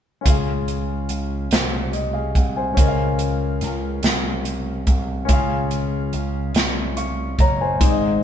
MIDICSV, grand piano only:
0, 0, Header, 1, 2, 480
1, 0, Start_track
1, 0, Key_signature, -5, "major"
1, 0, Tempo, 839161
1, 146, Time_signature, 6, 3, 24, 8
1, 4710, End_track
2, 0, Start_track
2, 0, Title_t, "Grand piano"
2, 0, Program_c, 0, 0
2, 121, Note_on_c, 0, 61, 44
2, 136, Note_on_c, 0, 65, 45
2, 144, Note_on_c, 0, 49, 44
2, 153, Note_on_c, 0, 68, 41
2, 169, Note_on_c, 0, 77, 52
2, 249, Control_c, 0, 64, 127
2, 842, Note_off_c, 0, 49, 0
2, 1090, Note_off_c, 0, 68, 0
2, 1098, Note_off_c, 0, 77, 0
2, 1102, Note_on_c, 0, 75, 40
2, 1218, Note_off_c, 0, 75, 0
2, 1220, Note_on_c, 0, 77, 42
2, 1226, Note_on_c, 0, 68, 35
2, 1451, Note_off_c, 0, 77, 0
2, 1454, Note_off_c, 0, 68, 0
2, 1467, Note_on_c, 0, 80, 40
2, 1472, Note_on_c, 0, 72, 37
2, 1550, Note_off_c, 0, 61, 0
2, 1558, Note_off_c, 0, 65, 0
2, 1566, Note_on_c, 0, 61, 52
2, 1581, Note_on_c, 0, 65, 44
2, 1589, Note_on_c, 0, 49, 51
2, 1593, Control_c, 0, 64, 0
2, 1596, Note_on_c, 0, 70, 46
2, 1608, Note_on_c, 0, 75, 46
2, 1634, Note_off_c, 0, 75, 0
2, 1648, Note_on_c, 0, 77, 57
2, 1676, Control_c, 0, 64, 127
2, 1694, Note_off_c, 0, 80, 0
2, 1697, Note_off_c, 0, 72, 0
2, 2284, Note_off_c, 0, 49, 0
2, 2992, Note_off_c, 0, 61, 0
2, 3000, Note_off_c, 0, 65, 0
2, 3003, Note_on_c, 0, 61, 54
2, 3007, Note_off_c, 0, 70, 0
2, 3019, Note_on_c, 0, 65, 51
2, 3024, Note_on_c, 0, 49, 49
2, 3033, Control_c, 0, 64, 0
2, 3033, Note_on_c, 0, 68, 49
2, 3034, Note_off_c, 0, 77, 0
2, 3049, Note_on_c, 0, 77, 61
2, 3126, Control_c, 0, 64, 127
2, 3722, Note_off_c, 0, 49, 0
2, 3978, Note_off_c, 0, 77, 0
2, 3985, Note_on_c, 0, 85, 49
2, 3989, Note_on_c, 0, 77, 40
2, 4213, Note_off_c, 0, 85, 0
2, 4215, Note_off_c, 0, 77, 0
2, 4234, Note_on_c, 0, 82, 54
2, 4239, Note_on_c, 0, 73, 43
2, 4344, Note_off_c, 0, 82, 0
2, 4346, Note_off_c, 0, 73, 0
2, 4353, Note_on_c, 0, 80, 46
2, 4356, Note_on_c, 0, 72, 40
2, 4431, Note_off_c, 0, 61, 0
2, 4439, Note_off_c, 0, 65, 0
2, 4446, Note_off_c, 0, 68, 0
2, 4458, Note_on_c, 0, 60, 49
2, 4463, Note_on_c, 0, 63, 52
2, 4466, Note_on_c, 0, 44, 53
2, 4469, Note_on_c, 0, 68, 48
2, 4471, Control_c, 0, 64, 0
2, 4478, Note_on_c, 0, 74, 46
2, 4509, Note_off_c, 0, 74, 0
2, 4516, Note_on_c, 0, 75, 57
2, 4577, Note_off_c, 0, 80, 0
2, 4578, Note_off_c, 0, 72, 0
2, 4587, Control_c, 0, 64, 127
2, 4710, Note_off_c, 0, 44, 0
2, 4710, Note_off_c, 0, 60, 0
2, 4710, Note_off_c, 0, 63, 0
2, 4710, Note_off_c, 0, 68, 0
2, 4710, Note_off_c, 0, 75, 0
2, 4710, End_track
0, 0, End_of_file